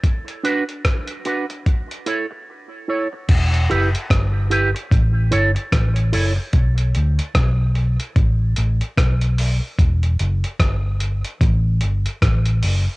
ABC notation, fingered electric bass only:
X:1
M:4/4
L:1/16
Q:"Swing 16ths" 1/4=74
K:Edor
V:1 name="Fingered electric bass" clef=bass
z16 | E,,,2 F,,, z G,,,3 z A,,,2 G,,, z A,,,2 F,,, z | B,,,2 D,, z B,,,3 z A,,,2 A,,, z B,,,3 z | E,,,2 F,,, z G,,,3 z A,,,2 G,,, z A,,,2 F,,, z |]